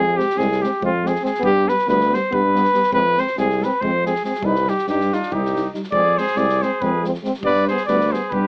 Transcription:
Already playing: tuba F2, flugelhorn G#4
0.16 euphonium G#3, french horn C4, flugelhorn G4, snare
0.29 snare
0.36 tuba C2, euphonium G#3, french horn C4, flugelhorn G#4, snare
0.52 snare
0.61 euphonium G#3, french horn C4, flugelhorn G4, snare
0.81 tuba F2, euphonium G#3, french horn C4, flugelhorn F4, kick
1.03 euphonium G#3, french horn C4, snare
1.07 flugelhorn G#4
1.15 snare
1.22 euphonium G#3, french horn C4, flugelhorn G#4, snare
1.34 snare
1.40 tuba G2, euphonium G3, french horn B3, kick
1.45 flugelhorn G4
1.65 euphonium G3, french horn B3, flugelhorn B4, snare
1.79 snare
1.87 tuba D2, euphonium G3, french horn B3, flugelhorn B4, snare
2.01 snare
2.10 euphonium G3, french horn B3, flugelhorn C5, snare
2.31 tuba G2, euphonium G3, french horn B3, flugelhorn B4, kick
2.55 euphonium G3, french horn B3, snare
2.64 snare
2.73 euphonium G3, french horn B3, snare
2.83 snare
2.92 tuba F2, euphonium G#3, french horn C4, flugelhorn B4, kick
3.16 euphonium G#3, french horn C4, flugelhorn C5, snare
3.27 snare
3.37 tuba C2, euphonium G#3, french horn C4, flugelhorn G#4, snare
3.50 snare
3.60 euphonium G#3, flugelhorn B4, snare
3.64 french horn C4
3.81 tuba F2, euphonium G#3, french horn C4, flugelhorn C5, kick
4.04 euphonium G#3, french horn C4, flugelhorn G#4, snare
4.15 snare
4.23 euphonium G#3, french horn C4, flugelhorn G#4, snare
4.34 snare
4.41 tuba C2, euphonium G3, french horn D#4, kick
4.45 flugelhorn B4
4.55 snare
4.67 euphonium G3, french horn D#4, flugelhorn G4, snare
4.78 snare
4.87 tuba G2, euphonium G3, french horn D#4, flugelhorn G4, snare
5.00 snare
5.12 euphonium G3, trumpet D4, french horn D#4, flugelhorn F4, snare
5.22 snare
5.31 tuba C2, euphonium G3, french horn D#4, trumpet D#4, flugelhorn G4, kick
5.45 snare
5.54 euphonium G3, french horn D#4, snare
5.72 euphonium G3, french horn D#4, snare
5.83 snare
5.92 tuba F2, euphonium G#3, french horn C4, trumpet G#4, flugelhorn D5, kick
6.16 euphonium G#3, french horn C4, trumpet G#4, flugelhorn C5, snare
6.27 snare
6.35 tuba C2, euphonium G#3, french horn C4, trumpet G#4, flugelhorn D5, snare
6.49 snare
6.62 euphonium G#3, french horn C4, trumpet G#4, flugelhorn C5, snare
6.81 tuba F2, euphonium G#3, french horn C4, trumpet G#4, flugelhorn B4, kick
7.03 euphonium G#3, french horn C4, snare
7.14 snare
7.23 euphonium G#3, french horn C4, snare
7.34 snare
7.40 tuba G2, euphonium G3, kick
7.45 french horn B3, trumpet B4, flugelhorn D5
7.67 euphonium G3, french horn B3, trumpet G#4, flugelhorn C5, snare
7.77 snare
7.86 tuba D2, euphonium G3, french horn B3, trumpet B4, flugelhorn D5, snare
8.00 snare
8.11 euphonium G3, french horn B3, trumpet G#4, flugelhorn C5, snare
8.30 tuba G2, euphonium G3, french horn B3, trumpet G4, flugelhorn B4, kick

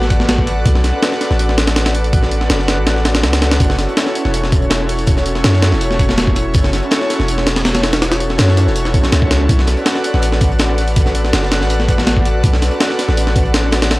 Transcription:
Already playing: 808-style bass A1, analog synth pad F#4 A4 B4 D5 F#5
0.02 snare
0.10 kick, closed hi-hat
0.20 snare
0.29 snare, closed hi-hat
0.39 kick
0.47 analog synth pad F#4 A4 B4 D5 F#5, closed hi-hat
0.66 808-style bass B1, analog synth pad F#4 A4 B4 D5 F#5, kick, closed hi-hat
0.75 snare
0.84 snare, closed hi-hat
1.03 snare, closed hi-hat
1.12 snare
1.21 snare, closed hi-hat
1.31 808-style bass A1, snare
1.39 closed hi-hat
1.49 snare
1.58 snare, closed hi-hat
1.67 snare, closed hi-hat
1.76 analog synth pad F#4 A4 B4 D5 F#5, snare, closed hi-hat
1.86 snare, closed hi-hat
1.95 closed hi-hat
2.04 closed hi-hat
2.13 analog synth pad F#4 A4 B4 D5 F#5, kick, closed hi-hat
2.23 snare
2.31 closed hi-hat
2.41 snare
2.50 808-style bass F#1, snare, closed hi-hat
2.59 snare
2.68 snare, closed hi-hat
2.78 808-style bass A1
2.87 snare, closed hi-hat
2.96 snare
3.05 snare, closed hi-hat
3.15 snare, closed hi-hat
3.23 808-style bass C#2, snare, closed hi-hat
3.33 snare, closed hi-hat
3.42 analog synth pad F#4 A4 B4 D5 F#5, snare, closed hi-hat
3.51 snare, closed hi-hat
3.60 808-style bass F#1, analog synth pad C#4 E4 F#4 A4 C#5, kick, closed hi-hat
3.70 snare
3.79 snare, closed hi-hat
3.89 closed hi-hat
3.97 snare, closed hi-hat
4.07 snare
4.15 closed hi-hat
4.25 808-style bass E1, snare
4.34 closed hi-hat
4.44 snare
4.52 kick, closed hi-hat
4.62 closed hi-hat
4.70 analog synth pad C#4 E4 F#4 A4 C#5, snare, closed hi-hat
4.89 closed hi-hat, open hi-hat
4.99 closed hi-hat
5.07 analog synth pad C#4 E4 F#4 A4 C#5, kick, closed hi-hat
5.17 snare, closed hi-hat
5.26 closed hi-hat
5.35 snare, closed hi-hat
5.44 808-style bass F#2, snare, closed hi-hat
5.54 snare
5.62 snare, closed hi-hat
5.72 808-style bass E1, snare
5.81 closed hi-hat
5.91 snare
5.99 kick, closed hi-hat
6.09 snare
6.18 snare, closed hi-hat
6.27 kick
6.36 analog synth pad C#4 E4 F#4 A4 C#5, closed hi-hat
6.54 808-style bass F#1, analog synth pad C#4 E4 F#4 A4 C#5, kick, closed hi-hat
6.64 snare
6.73 snare, closed hi-hat
6.82 closed hi-hat
6.91 snare, closed hi-hat
7.01 snare
7.10 snare, closed hi-hat
7.20 808-style bass E1, snare
7.28 closed hi-hat
7.37 snare
7.47 snare, closed hi-hat
7.56 snare, closed hi-hat
7.65 analog synth pad C#4 E4 F#4 A4 C#5, snare, closed hi-hat
7.75 snare, closed hi-hat
7.83 snare, closed hi-hat, open hi-hat
7.93 snare, closed hi-hat
8.02 analog synth pad C#4 E4 F#4 A4 C#5, snare, closed hi-hat
8.12 snare, closed hi-hat
8.20 closed hi-hat
8.29 snare, closed hi-hat
8.38 808-style bass F#2, snare, closed hi-hat
8.48 snare
8.57 snare, closed hi-hat
8.67 808-style bass E1, snare
8.76 closed hi-hat
8.85 snare
8.94 808-style bass B1, kick, closed hi-hat
9.03 snare
9.12 808-style bass C#2, snare, closed hi-hat
9.22 analog synth pad C#4 E4 F#4 A4 C#5, kick
9.31 snare, closed hi-hat
9.49 808-style bass B1, analog synth pad F#4 A4 B4 D5 F#5, kick, closed hi-hat
9.59 snare
9.67 snare, closed hi-hat
9.77 closed hi-hat
9.86 snare, closed hi-hat
9.96 snare
10.04 closed hi-hat
10.14 808-style bass A1, snare
10.22 closed hi-hat
10.32 snare
10.41 kick, closed hi-hat
10.51 closed hi-hat
10.59 analog synth pad F#4 A4 B4 D5 F#5, snare, closed hi-hat
10.78 closed hi-hat, open hi-hat
10.88 closed hi-hat
10.96 analog synth pad F#4 A4 B4 D5 F#5, kick, closed hi-hat
11.06 snare, closed hi-hat
11.15 closed hi-hat
11.25 snare, closed hi-hat
11.33 808-style bass F#1, snare, closed hi-hat
11.43 snare
11.51 snare, closed hi-hat
11.61 808-style bass A1, snare
11.69 closed hi-hat
11.79 snare
11.89 kick, closed hi-hat
11.98 snare
12.07 snare, closed hi-hat
12.17 kick
12.25 analog synth pad F#4 A4 B4 D5 F#5, closed hi-hat
12.43 808-style bass B1, analog synth pad F#4 A4 B4 D5 F#5, kick, closed hi-hat
12.53 snare
12.62 snare, closed hi-hat
12.71 closed hi-hat
12.80 snare, closed hi-hat
12.90 snare
12.99 snare, closed hi-hat
13.08 808-style bass A1, snare
13.17 closed hi-hat
13.27 snare
13.36 kick, closed hi-hat
13.45 closed hi-hat
13.54 analog synth pad F#4 A4 B4 D5 F#5, snare, closed hi-hat
13.72 snare, closed hi-hat, open hi-hat
13.82 snare, closed hi-hat
13.91 analog synth pad F#4 A4 B4 D5 F#5, snare, closed hi-hat

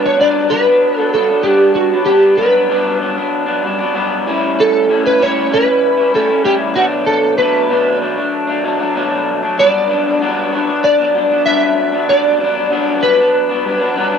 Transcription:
Already playing: clean electric guitar G2 F#3 B3 D4
0.06 electric slide guitar C#5
0.17 clean electric guitar G2 F#3 B3 D4, electric slide guitar D5
0.49 clean electric guitar G2 F#3 B3 D4, electric slide guitar B4
0.67 clean electric guitar F#3 B3 D4
0.98 clean electric guitar F#3 B3 D4, electric slide guitar A4
1.13 clean electric guitar G2 F#3 B3 D4, electric slide guitar A4
1.28 clean electric guitar F#3 B3 D4
1.43 clean electric guitar G2 B3 D4, electric slide guitar G4
1.75 electric slide guitar F#4
1.91 clean electric guitar F#3 B3 D4
2.06 clean electric guitar G2 B3, electric slide guitar G4
2.10 clean electric guitar D4
2.37 clean electric guitar G2 F#3 B3, electric slide guitar B4
2.42 clean electric guitar D4
2.69 clean electric guitar G2 F#3 B3 D4
3.01 clean electric guitar G2 F#3 B3 D4
3.16 clean electric guitar F#3 B3 D4
3.46 clean electric guitar B3 D4
3.50 clean electric guitar F#3
3.62 clean electric guitar G2 F#3 B3 D4
3.79 clean electric guitar F#3 B3 D4
3.94 clean electric guitar G2 F#3 B3 D4
4.26 clean electric guitar A2 G3 C#4 E4
4.60 electric slide guitar A4
4.88 clean electric guitar A2 G3 C#4 E4
5.06 electric slide guitar B4
5.19 clean electric guitar A2 G3 C#4 E4, electric slide guitar C#5
5.50 clean electric guitar A2 G3 C#4 E4, electric slide guitar B4
5.66 clean electric guitar G3 C#4 E4
5.97 clean electric guitar G3 C#4 E4
6.13 clean electric guitar A2 G3 C#4 E4, electric slide guitar A4
6.28 clean electric guitar G3 C#4 E4
6.44 clean electric guitar A2 G3 C#4 E4, electric slide guitar G4
6.75 clean electric guitar B2 F#3 A3 D4, electric slide guitar F#4
7.06 electric slide guitar A4
7.38 clean electric guitar B2 F#3 A3 D4, electric slide guitar B4
7.69 clean electric guitar B2 F#3 A3 D4
8.00 clean electric guitar B2 F#3 A3 D4
8.16 clean electric guitar F#3 A3 D4
8.47 clean electric guitar F#3 A3 D4
8.63 clean electric guitar B2 F#3 A3 D4
8.79 clean electric guitar F#3 A3 D4
8.95 clean electric guitar B2 F#3 A3 D4
9.43 clean electric guitar F#3 A3 D4
9.57 clean electric guitar G2 F#3 B3 D4, electric slide guitar D5
9.88 clean electric guitar G2 F#3 B3 D4
10.20 clean electric guitar G2 F#3 B3 D4
10.43 electric slide guitar C#5
10.51 clean electric guitar G2 F#3 B3 D4
10.67 clean electric guitar F#3 B3 D4
10.84 electric slide guitar D5
10.98 clean electric guitar F#3 B3 D4
11.14 clean electric guitar G2 F#3 B3 D4
11.30 clean electric guitar F#3 B3 D4
11.45 clean electric guitar G2 F#3 B3 D4, electric slide guitar E5
11.92 clean electric guitar F#3 B3 D4
12.08 clean electric guitar G2 F#3 B3 D4, electric slide guitar D5
12.40 clean electric guitar G2 F#3 B3 D4
12.71 clean electric guitar G2 F#3 B3 D4
13.01 clean electric guitar G2 F#3 B3 D4, electric slide guitar B4
13.18 clean electric guitar F#3 B3 D4
13.49 clean electric guitar F#3 B3 D4
13.64 clean electric guitar G2 F#3 B3 D4
13.79 clean electric guitar F#3 B3 D4
13.96 clean electric guitar G2 F#3 B3 D4

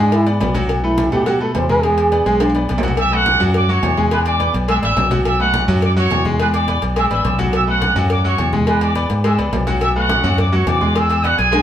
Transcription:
Already playing: trombone D4
0.00 fingered electric bass G#2, grand piano G#3 G#4 G#5
0.12 trombone E4, cowbell, high conga, low agogo
0.26 grand piano B3 B4 D5, cowbell
0.40 fingered electric bass B1, grand piano B3 B4 D5, cowbell, high conga, low timbale, low agogo
0.54 grand piano F#3 F#4 F#5, cowbell, high conga, low agogo
0.69 cowbell, high conga, low agogo
0.83 grand piano A3 A4 B4, trombone E4, high conga
0.98 cowbell, high conga, low agogo
1.12 fingered electric bass B2, grand piano A3 A4 B4, trombone G4, high conga, low conga, low agogo
1.26 grand piano F#3 F#4 F#5, trombone G4, cowbell, high conga
1.40 grand piano A3 A4 B4, trombone A4, high conga
1.54 fingered electric bass E2, trombone C5, cowbell, high conga, low timbale, low agogo
1.69 grand piano G#3 G#4 G#5, trombone B4, high conga
1.83 grand piano G#3 G#4 G#5, trombone G#4, cowbell, high conga, low agogo
1.98 cowbell, high conga, low agogo
2.12 grand piano B3 B4 D5, cowbell, high conga
2.26 fingered electric bass B1, grand piano G#3 G#4 G#5, cowbell, high conga, low agogo
2.40 cowbell, high conga, high timbale, low agogo
2.50 high timbale
2.55 grand piano B3 B4 D5, cowbell
2.69 fingered electric bass B1, grand piano B3 B4 D5, cowbell, high conga, low agogo
2.78 low timbale
2.83 grand piano F#3 F#4 F#5, cowbell, high conga, low agogo
2.88 low timbale
2.97 trumpet section E5 E6, cowbell, high conga, low agogo
3.12 grand piano A3 A4 B4, trumpet section F#4 F#5, high conga
3.26 cowbell, high conga, low agogo
3.40 fingered electric bass F#2, grand piano F#3 F#4 F#5, high conga, low conga, low agogo
3.54 trumpet section D5 D6, cowbell, high conga
3.69 grand piano F#3 F#4 F#5, trumpet section C#5 C#6, high conga
3.83 fingered electric bass E2, cowbell, high conga, low timbale, low agogo
3.97 grand piano G#3 G#4 G#5, high conga
4.11 grand piano G#3 G#4 G#5, trumpet section B4 B5, cowbell, high conga, low agogo
4.25 trumpet section D5 D6, cowbell, low agogo
4.40 grand piano B3 B4 D5, cowbell, high conga
4.54 fingered electric bass B1, cowbell, high conga, low agogo
4.68 grand piano G#3 G#4 G#5, trumpet section E5 E6, cowbell, low agogo
4.82 fingered electric bass A1, grand piano B3 B4 D5, trumpet section E5 E6, cowbell, high conga
4.97 fingered electric bass B1, cowbell, high conga, low timbale, low agogo
5.11 grand piano F#3 F#4 F#5, cowbell, high conga, low agogo
5.25 trumpet section E5 E6, cowbell, high conga, low agogo
5.40 grand piano A3 A4 B4, trumpet section F#4 F#5, high conga
5.54 cowbell, high conga, low agogo
5.68 fingered electric bass F#2, grand piano F#3 F#4 F#5, high conga, low conga, low agogo
5.82 trumpet section D5 D6, cowbell, high conga
5.97 grand piano F#3 F#4 F#5, trumpet section C#5 C#6, high conga
6.11 fingered electric bass E2, cowbell, high conga, low timbale, low agogo
6.25 grand piano G#3 G#4 G#5, high conga
6.39 grand piano G#3 G#4 G#5, trumpet section B4 B5, cowbell, high conga, low agogo
6.54 trumpet section D5 D6, cowbell, high conga, low agogo
6.68 grand piano B3 B4 D5, cowbell, high conga
6.82 fingered electric bass B1, cowbell, high conga, low agogo
6.96 grand piano G#3 G#4 G#5, trumpet section E5 E6, cowbell, high conga, low agogo
7.10 fingered electric bass A1, grand piano B3 B4 D5, trumpet section E5 E6, cowbell, high conga
7.25 fingered electric bass B1, cowbell, high conga, low agogo
7.39 grand piano F#3 F#4 F#5, cowbell, high conga, low agogo
7.53 trumpet section E5 E6, cowbell, high conga, low agogo
7.67 grand piano A3 A4 B4, trumpet section F#4 F#5, high conga
7.82 cowbell, high conga, low agogo
7.96 fingered electric bass F#2, grand piano F#3 F#4 F#5, high conga, low conga, low agogo
8.10 trumpet section D5 D6, cowbell, high conga
8.24 grand piano F#3 F#4 F#5, trumpet section C#5 C#6, high conga
8.38 fingered electric bass E2, cowbell, high conga, low agogo
8.53 grand piano G#3 G#4 G#5, high conga
8.67 grand piano G#3 G#4 G#5, trumpet section B4 B5, cowbell, high conga, low agogo
8.81 trumpet section D5 D6, cowbell, high conga, low agogo
8.95 grand piano B3 B4 D5, cowbell, high conga
9.10 fingered electric bass G#2, cowbell, high conga, low agogo
9.24 grand piano G#3 G#4 G#5, trumpet section E5 E6, cowbell, high conga, low agogo
9.38 fingered electric bass C#2, grand piano B3 B4 D5, cowbell, high conga
9.53 fingered electric bass B1, cowbell, high conga, low timbale, low agogo
9.67 grand piano F#3 F#4 F#5, cowbell, high conga, low agogo
9.81 trumpet section E5 E6, cowbell, high conga, low agogo
9.95 grand piano A3 A4 B4, trumpet section F#4 F#5, high conga
10.09 cowbell, high conga, low agogo
10.24 fingered electric bass F#2, grand piano F#3 F#4 F#5, high conga, low conga, low agogo
10.38 trumpet section D5 D6, cowbell, high conga, low conga
10.52 grand piano F#3 F#4 F#5, trumpet section C#5 C#6, high conga
10.66 fingered electric bass E2, trumpet section D5 D6, cowbell, high conga, low timbale, low agogo
10.81 grand piano G#3 G#4 G#5, high conga
10.95 grand piano G#3 G#4 G#5, trumpet section E5 E6, cowbell, high conga, low agogo
11.10 cowbell, high conga, low agogo
11.23 grand piano B3 B4 D5, trumpet section F#4 F#5, cowbell, high conga
11.38 fingered electric bass B1, trumpet section G#4 G#5, cowbell, high conga, low agogo
11.52 grand piano G#3 G#4 G#5, cowbell, high conga, high timbale, low agogo

